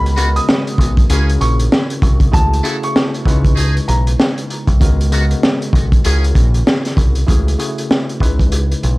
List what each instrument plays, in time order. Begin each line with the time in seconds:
Already playing: picked electric bass C#2, tine electric piano C#3 G#3 B3 F#4 A#4, upright piano B5
0.06 closed hi-hat
0.16 tine electric piano C#3 G#3 B3 F#4 A#4, trumpet section B3 F#4, closed hi-hat
0.36 upright piano D#6, closed hi-hat
0.49 snare
0.67 closed hi-hat
0.78 picked electric bass B1, kick, closed hi-hat
0.97 kick, closed hi-hat
1.10 picked electric bass C#2, tine electric piano C#3 C#4 E4 F#4 G#4 A#4, trumpet section C#4 G#4, closed hi-hat
1.29 closed hi-hat
1.41 picked electric bass A#1, upright piano C#6, closed hi-hat
1.60 closed hi-hat
1.72 snare
1.90 closed hi-hat
2.02 picked electric bass C2, kick, closed hi-hat
2.20 kick, closed hi-hat
2.31 picked electric bass C#2, tine electric piano C#3 A3 E4 F#4 G#4, upright piano A5, kick, closed hi-hat
2.53 closed hi-hat
2.63 tine electric piano C#3 A3 E4 F#4 G#4, trumpet section F#3 E4 A4, closed hi-hat
2.83 upright piano C#6, closed hi-hat
2.96 snare
3.14 closed hi-hat
3.25 picked electric bass C#2, tine electric piano C#3 G#3 D#4 E4 B4, kick, closed hi-hat
3.45 kick, closed hi-hat
3.55 trumpet section D#4 G#4, closed hi-hat
3.77 closed hi-hat
3.88 picked electric bass B1, upright piano A#5, closed hi-hat
4.07 closed hi-hat
4.20 snare
4.38 closed hi-hat
4.50 closed hi-hat
4.67 picked electric bass C2, kick, closed hi-hat
4.80 picked electric bass C#2, tine electric piano C#3 G#3 B3 F#4 A#4, kick, closed hi-hat
5.01 closed hi-hat
5.12 tine electric piano C#3 G#3 B3 F#4 A#4, trumpet section B3 F#4, closed hi-hat
5.31 closed hi-hat
5.43 snare
5.62 closed hi-hat
5.73 picked electric bass B1, kick, closed hi-hat
5.92 kick, closed hi-hat
6.04 picked electric bass C#2, tine electric piano C#3 C#4 E4 F#4 G#4 A#4, trumpet section C#4 G#4, closed hi-hat
6.24 closed hi-hat
6.35 picked electric bass A#1, kick, closed hi-hat
6.54 closed hi-hat
6.67 snare
6.85 snare, closed hi-hat
6.97 picked electric bass C2, kick, closed hi-hat
7.15 closed hi-hat
7.26 picked electric bass C#2, tine electric piano C#3 A3 E4 F#4 G#4, kick, closed hi-hat
7.48 closed hi-hat
7.58 tine electric piano C#3 A3 E4 F#4 G#4, closed hi-hat
7.78 closed hi-hat
7.91 snare
8.09 closed hi-hat
8.20 picked electric bass C#2, tine electric piano C#3 G#3 D#4 E4 B4, kick, closed hi-hat
8.39 kick, closed hi-hat
8.52 closed hi-hat
8.72 closed hi-hat
8.83 picked electric bass B1, closed hi-hat